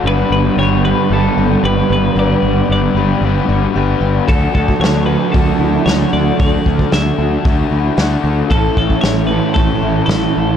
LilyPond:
<<
  \new Staff \with { instrumentName = "Clean electric guitar" } { \time 4/4 \key d \major \tempo 4 = 114 b'8 b'8 cis''8 b'8 a'4 b'8 b'8 | d''4 d''2~ d''8 r8 | a'8 a'8 cis''8 b'8 a'4 cis''8 d''8 | d''4 e''2~ e''8 r8 |
a'8 a'8 cis''8 b'8 a'4 a'4 | }
  \new Staff \with { instrumentName = "Twelve-string acoustic guitar" } { \time 4/4 \key d \major b'4 r8 g'4 fis'8 g'8 b'8 | b'4 r8 g'4 fis'8 g'8 b'8 | a'4 r8 fis'4 e'8 fis'8 a'8 | a'4 r8 fis'4 e'8 fis'8 a'8 |
a'4 r8 fis'4 e'8 fis'8 a'8 | }
  \new Staff \with { instrumentName = "Overdriven electric guitar" } { \time 4/4 \key d \major <g b d' b'>4 <g b d' b'>8 <b d' b'>8 <g b d' b'>4 <g b d' b'>4 | <g b d' b'>4 <g b d' b'>8 <b d' b'>8 <g b d' b'>4 <g b d' b'>4 | <d d' fis' a'>4 <d d' fis' a'>8 <d' fis' a'>8 <d d' fis' a'>4 <d d' fis' a'>4 | <d d' fis' a'>4 <d d' fis' a'>8 <d' fis' a'>8 <d d' fis' a'>4 <d d' fis' a'>4 |
<a, a cis' e' a'>4 <a cis' e' a'>8 <cis' e' a'>8 <a, a cis' e' a'>4 <a cis' e' a'>4 | }
  \new Staff \with { instrumentName = "Overdriven electric guitar" } { \clef bass \time 4/4 \key d \major <g, d g b d'>1~ | <g, d g b d'>1 | <d fis a d'>1~ | <d fis a d'>1 |
<a, e a cis' e'>1 | }
  \new Staff \with { instrumentName = "Fingered electric bass" } { \clef bass \time 4/4 \key d \major g,,8 g,,8 g,,4 g,,8 g,,8 g,,8 g,,8 | g,,8 g,,8 g,,8 g,,8 g,,8 g,,8 g,,8 g,,8 | d,8 d,8 d,4 d,8 d,8 d,8 d,8 | d,8 d,8 d,8 d,8 d,8 d,8 d,8 d,8 |
a,,8 a,,8 a,,4 a,,8 a,,8 a,,8 a,,8 | }
  \new DrumStaff \with { instrumentName = "Drums" } \drummode { \time 4/4 r4 r4 r4 r4 | r4 r4 r4 r4 | <hho bd>8 bd16 bd16 <hho sn>4 <hho bd>4 <hho sn>4 | <hho bd>8 bd16 bd16 <hho sn>4 <hho bd>4 <hho sn>4 |
<hho bd>8 bd16 bd16 <hho sn>4 <hho bd>4 <hho sn>4 | }
>>